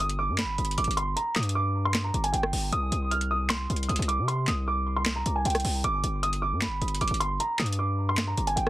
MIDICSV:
0, 0, Header, 1, 4, 480
1, 0, Start_track
1, 0, Tempo, 389610
1, 1437, Time_signature, 4, 2, 24, 8
1, 10715, End_track
2, 0, Start_track
2, 0, Title_t, "Grand piano"
2, 0, Program_c, 0, 0
2, 0, Note_on_c, 0, 87, 91
2, 204, Note_off_c, 0, 87, 0
2, 230, Note_on_c, 0, 86, 80
2, 440, Note_off_c, 0, 86, 0
2, 478, Note_on_c, 0, 83, 86
2, 929, Note_off_c, 0, 83, 0
2, 959, Note_on_c, 0, 86, 83
2, 1165, Note_off_c, 0, 86, 0
2, 1195, Note_on_c, 0, 84, 86
2, 1403, Note_off_c, 0, 84, 0
2, 1434, Note_on_c, 0, 82, 86
2, 1643, Note_off_c, 0, 82, 0
2, 1673, Note_on_c, 0, 87, 80
2, 1882, Note_off_c, 0, 87, 0
2, 1913, Note_on_c, 0, 86, 79
2, 2253, Note_off_c, 0, 86, 0
2, 2284, Note_on_c, 0, 84, 85
2, 2488, Note_off_c, 0, 84, 0
2, 2514, Note_on_c, 0, 82, 74
2, 2722, Note_off_c, 0, 82, 0
2, 2757, Note_on_c, 0, 80, 91
2, 2861, Note_off_c, 0, 80, 0
2, 2866, Note_on_c, 0, 79, 84
2, 3322, Note_off_c, 0, 79, 0
2, 3358, Note_on_c, 0, 87, 110
2, 3809, Note_off_c, 0, 87, 0
2, 3833, Note_on_c, 0, 89, 91
2, 4042, Note_off_c, 0, 89, 0
2, 4075, Note_on_c, 0, 87, 79
2, 4283, Note_off_c, 0, 87, 0
2, 4308, Note_on_c, 0, 84, 93
2, 4763, Note_off_c, 0, 84, 0
2, 4786, Note_on_c, 0, 87, 80
2, 4998, Note_off_c, 0, 87, 0
2, 5029, Note_on_c, 0, 86, 81
2, 5239, Note_off_c, 0, 86, 0
2, 5273, Note_on_c, 0, 84, 83
2, 5482, Note_off_c, 0, 84, 0
2, 5518, Note_on_c, 0, 87, 82
2, 5725, Note_off_c, 0, 87, 0
2, 5761, Note_on_c, 0, 86, 81
2, 6098, Note_off_c, 0, 86, 0
2, 6116, Note_on_c, 0, 84, 76
2, 6324, Note_off_c, 0, 84, 0
2, 6353, Note_on_c, 0, 82, 74
2, 6562, Note_off_c, 0, 82, 0
2, 6599, Note_on_c, 0, 80, 87
2, 6702, Note_off_c, 0, 80, 0
2, 6722, Note_on_c, 0, 79, 89
2, 7171, Note_off_c, 0, 79, 0
2, 7198, Note_on_c, 0, 86, 112
2, 7649, Note_off_c, 0, 86, 0
2, 7674, Note_on_c, 0, 87, 96
2, 7882, Note_off_c, 0, 87, 0
2, 7909, Note_on_c, 0, 86, 81
2, 8120, Note_off_c, 0, 86, 0
2, 8158, Note_on_c, 0, 83, 84
2, 8608, Note_off_c, 0, 83, 0
2, 8638, Note_on_c, 0, 86, 82
2, 8845, Note_off_c, 0, 86, 0
2, 8875, Note_on_c, 0, 84, 93
2, 9083, Note_off_c, 0, 84, 0
2, 9116, Note_on_c, 0, 82, 90
2, 9323, Note_off_c, 0, 82, 0
2, 9355, Note_on_c, 0, 87, 81
2, 9563, Note_off_c, 0, 87, 0
2, 9595, Note_on_c, 0, 86, 75
2, 9934, Note_off_c, 0, 86, 0
2, 9967, Note_on_c, 0, 84, 85
2, 10170, Note_off_c, 0, 84, 0
2, 10194, Note_on_c, 0, 82, 75
2, 10403, Note_off_c, 0, 82, 0
2, 10438, Note_on_c, 0, 80, 95
2, 10541, Note_off_c, 0, 80, 0
2, 10548, Note_on_c, 0, 79, 87
2, 10715, Note_off_c, 0, 79, 0
2, 10715, End_track
3, 0, Start_track
3, 0, Title_t, "808-style bass"
3, 0, Program_c, 1, 38
3, 0, Note_on_c, 1, 31, 108
3, 356, Note_on_c, 1, 43, 105
3, 375, Note_off_c, 1, 31, 0
3, 537, Note_on_c, 1, 31, 97
3, 556, Note_off_c, 1, 43, 0
3, 708, Note_off_c, 1, 31, 0
3, 718, Note_on_c, 1, 31, 105
3, 948, Note_off_c, 1, 31, 0
3, 958, Note_on_c, 1, 31, 108
3, 1073, Note_off_c, 1, 31, 0
3, 1078, Note_on_c, 1, 31, 102
3, 1423, Note_off_c, 1, 31, 0
3, 1678, Note_on_c, 1, 43, 108
3, 2599, Note_off_c, 1, 43, 0
3, 2637, Note_on_c, 1, 31, 104
3, 2867, Note_off_c, 1, 31, 0
3, 2876, Note_on_c, 1, 31, 105
3, 3107, Note_off_c, 1, 31, 0
3, 3116, Note_on_c, 1, 31, 106
3, 3347, Note_off_c, 1, 31, 0
3, 3355, Note_on_c, 1, 36, 115
3, 3586, Note_off_c, 1, 36, 0
3, 3596, Note_on_c, 1, 36, 102
3, 4518, Note_off_c, 1, 36, 0
3, 4556, Note_on_c, 1, 36, 105
3, 4787, Note_off_c, 1, 36, 0
3, 4796, Note_on_c, 1, 36, 109
3, 4911, Note_off_c, 1, 36, 0
3, 4917, Note_on_c, 1, 36, 111
3, 5157, Note_on_c, 1, 48, 104
3, 5176, Note_off_c, 1, 36, 0
3, 5499, Note_off_c, 1, 48, 0
3, 5517, Note_on_c, 1, 36, 105
3, 6439, Note_off_c, 1, 36, 0
3, 6478, Note_on_c, 1, 36, 101
3, 6708, Note_off_c, 1, 36, 0
3, 6717, Note_on_c, 1, 36, 106
3, 6947, Note_off_c, 1, 36, 0
3, 6956, Note_on_c, 1, 36, 109
3, 7187, Note_off_c, 1, 36, 0
3, 7196, Note_on_c, 1, 31, 115
3, 7427, Note_off_c, 1, 31, 0
3, 7435, Note_on_c, 1, 31, 106
3, 8035, Note_on_c, 1, 43, 105
3, 8054, Note_off_c, 1, 31, 0
3, 8216, Note_on_c, 1, 31, 102
3, 8235, Note_off_c, 1, 43, 0
3, 8387, Note_off_c, 1, 31, 0
3, 8396, Note_on_c, 1, 31, 107
3, 8627, Note_off_c, 1, 31, 0
3, 8637, Note_on_c, 1, 31, 106
3, 8749, Note_off_c, 1, 31, 0
3, 8757, Note_on_c, 1, 31, 102
3, 9102, Note_off_c, 1, 31, 0
3, 9357, Note_on_c, 1, 43, 108
3, 10279, Note_off_c, 1, 43, 0
3, 10318, Note_on_c, 1, 31, 104
3, 10548, Note_off_c, 1, 31, 0
3, 10557, Note_on_c, 1, 31, 106
3, 10715, Note_off_c, 1, 31, 0
3, 10715, End_track
4, 0, Start_track
4, 0, Title_t, "Drums"
4, 117, Note_on_c, 9, 42, 58
4, 240, Note_off_c, 9, 42, 0
4, 470, Note_on_c, 9, 39, 105
4, 476, Note_on_c, 9, 38, 126
4, 476, Note_on_c, 9, 42, 86
4, 593, Note_off_c, 9, 39, 0
4, 599, Note_off_c, 9, 38, 0
4, 599, Note_off_c, 9, 42, 0
4, 717, Note_on_c, 9, 42, 49
4, 797, Note_off_c, 9, 42, 0
4, 797, Note_on_c, 9, 42, 58
4, 877, Note_off_c, 9, 42, 0
4, 877, Note_on_c, 9, 42, 64
4, 958, Note_off_c, 9, 42, 0
4, 958, Note_on_c, 9, 42, 68
4, 1038, Note_off_c, 9, 42, 0
4, 1038, Note_on_c, 9, 42, 75
4, 1118, Note_off_c, 9, 42, 0
4, 1118, Note_on_c, 9, 42, 78
4, 1198, Note_off_c, 9, 42, 0
4, 1198, Note_on_c, 9, 42, 75
4, 1321, Note_off_c, 9, 42, 0
4, 1438, Note_on_c, 9, 42, 82
4, 1561, Note_off_c, 9, 42, 0
4, 1672, Note_on_c, 9, 39, 70
4, 1677, Note_on_c, 9, 38, 87
4, 1677, Note_on_c, 9, 42, 47
4, 1759, Note_off_c, 9, 42, 0
4, 1759, Note_on_c, 9, 42, 63
4, 1795, Note_off_c, 9, 39, 0
4, 1801, Note_off_c, 9, 38, 0
4, 1838, Note_off_c, 9, 42, 0
4, 1838, Note_on_c, 9, 42, 81
4, 1961, Note_off_c, 9, 42, 0
4, 2392, Note_on_c, 9, 39, 107
4, 2398, Note_on_c, 9, 38, 127
4, 2398, Note_on_c, 9, 42, 83
4, 2515, Note_off_c, 9, 39, 0
4, 2521, Note_off_c, 9, 38, 0
4, 2521, Note_off_c, 9, 42, 0
4, 2638, Note_on_c, 9, 42, 68
4, 2758, Note_off_c, 9, 42, 0
4, 2758, Note_on_c, 9, 42, 71
4, 2878, Note_off_c, 9, 42, 0
4, 2878, Note_on_c, 9, 42, 80
4, 2997, Note_on_c, 9, 37, 96
4, 3001, Note_off_c, 9, 42, 0
4, 3118, Note_on_c, 9, 46, 75
4, 3120, Note_off_c, 9, 37, 0
4, 3241, Note_off_c, 9, 46, 0
4, 3357, Note_on_c, 9, 42, 80
4, 3481, Note_off_c, 9, 42, 0
4, 3597, Note_on_c, 9, 42, 75
4, 3721, Note_off_c, 9, 42, 0
4, 3837, Note_on_c, 9, 42, 61
4, 3956, Note_off_c, 9, 42, 0
4, 3956, Note_on_c, 9, 42, 59
4, 4080, Note_off_c, 9, 42, 0
4, 4310, Note_on_c, 9, 39, 108
4, 4315, Note_on_c, 9, 38, 127
4, 4316, Note_on_c, 9, 42, 83
4, 4433, Note_off_c, 9, 39, 0
4, 4439, Note_off_c, 9, 38, 0
4, 4439, Note_off_c, 9, 42, 0
4, 4557, Note_on_c, 9, 42, 50
4, 4637, Note_off_c, 9, 42, 0
4, 4637, Note_on_c, 9, 42, 58
4, 4717, Note_off_c, 9, 42, 0
4, 4717, Note_on_c, 9, 42, 62
4, 4797, Note_off_c, 9, 42, 0
4, 4797, Note_on_c, 9, 42, 67
4, 4877, Note_off_c, 9, 42, 0
4, 4877, Note_on_c, 9, 42, 73
4, 4957, Note_off_c, 9, 42, 0
4, 4957, Note_on_c, 9, 42, 79
4, 5037, Note_off_c, 9, 42, 0
4, 5037, Note_on_c, 9, 42, 76
4, 5160, Note_off_c, 9, 42, 0
4, 5278, Note_on_c, 9, 42, 80
4, 5401, Note_off_c, 9, 42, 0
4, 5511, Note_on_c, 9, 39, 68
4, 5517, Note_on_c, 9, 38, 85
4, 5517, Note_on_c, 9, 42, 76
4, 5634, Note_off_c, 9, 39, 0
4, 5640, Note_off_c, 9, 38, 0
4, 5640, Note_off_c, 9, 42, 0
4, 6230, Note_on_c, 9, 39, 106
4, 6236, Note_on_c, 9, 38, 124
4, 6237, Note_on_c, 9, 42, 84
4, 6354, Note_off_c, 9, 39, 0
4, 6359, Note_off_c, 9, 38, 0
4, 6360, Note_off_c, 9, 42, 0
4, 6477, Note_on_c, 9, 42, 77
4, 6600, Note_off_c, 9, 42, 0
4, 6717, Note_on_c, 9, 42, 69
4, 6777, Note_off_c, 9, 42, 0
4, 6777, Note_on_c, 9, 42, 71
4, 6836, Note_off_c, 9, 42, 0
4, 6836, Note_on_c, 9, 37, 96
4, 6836, Note_on_c, 9, 42, 68
4, 6896, Note_off_c, 9, 42, 0
4, 6896, Note_on_c, 9, 42, 68
4, 6956, Note_on_c, 9, 46, 76
4, 6959, Note_off_c, 9, 37, 0
4, 7019, Note_off_c, 9, 42, 0
4, 7079, Note_off_c, 9, 46, 0
4, 7196, Note_on_c, 9, 42, 82
4, 7319, Note_off_c, 9, 42, 0
4, 7437, Note_on_c, 9, 42, 75
4, 7560, Note_off_c, 9, 42, 0
4, 7677, Note_on_c, 9, 42, 57
4, 7797, Note_off_c, 9, 42, 0
4, 7797, Note_on_c, 9, 42, 61
4, 7920, Note_off_c, 9, 42, 0
4, 8150, Note_on_c, 9, 39, 104
4, 8156, Note_on_c, 9, 38, 126
4, 8157, Note_on_c, 9, 42, 85
4, 8274, Note_off_c, 9, 39, 0
4, 8279, Note_off_c, 9, 38, 0
4, 8280, Note_off_c, 9, 42, 0
4, 8397, Note_on_c, 9, 42, 52
4, 8477, Note_off_c, 9, 42, 0
4, 8477, Note_on_c, 9, 42, 55
4, 8557, Note_off_c, 9, 42, 0
4, 8557, Note_on_c, 9, 42, 63
4, 8637, Note_off_c, 9, 42, 0
4, 8637, Note_on_c, 9, 42, 67
4, 8717, Note_off_c, 9, 42, 0
4, 8717, Note_on_c, 9, 42, 75
4, 8798, Note_off_c, 9, 42, 0
4, 8798, Note_on_c, 9, 42, 79
4, 8877, Note_off_c, 9, 42, 0
4, 8877, Note_on_c, 9, 42, 77
4, 9001, Note_off_c, 9, 42, 0
4, 9118, Note_on_c, 9, 42, 80
4, 9241, Note_off_c, 9, 42, 0
4, 9352, Note_on_c, 9, 39, 71
4, 9358, Note_on_c, 9, 38, 86
4, 9358, Note_on_c, 9, 42, 46
4, 9437, Note_off_c, 9, 42, 0
4, 9437, Note_on_c, 9, 42, 61
4, 9475, Note_off_c, 9, 39, 0
4, 9481, Note_off_c, 9, 38, 0
4, 9517, Note_off_c, 9, 42, 0
4, 9517, Note_on_c, 9, 42, 80
4, 9640, Note_off_c, 9, 42, 0
4, 10070, Note_on_c, 9, 39, 105
4, 10076, Note_on_c, 9, 38, 125
4, 10077, Note_on_c, 9, 42, 88
4, 10194, Note_off_c, 9, 39, 0
4, 10199, Note_off_c, 9, 38, 0
4, 10200, Note_off_c, 9, 42, 0
4, 10318, Note_on_c, 9, 42, 68
4, 10437, Note_off_c, 9, 42, 0
4, 10437, Note_on_c, 9, 42, 68
4, 10558, Note_off_c, 9, 42, 0
4, 10558, Note_on_c, 9, 42, 80
4, 10677, Note_on_c, 9, 37, 95
4, 10681, Note_off_c, 9, 42, 0
4, 10715, Note_off_c, 9, 37, 0
4, 10715, End_track
0, 0, End_of_file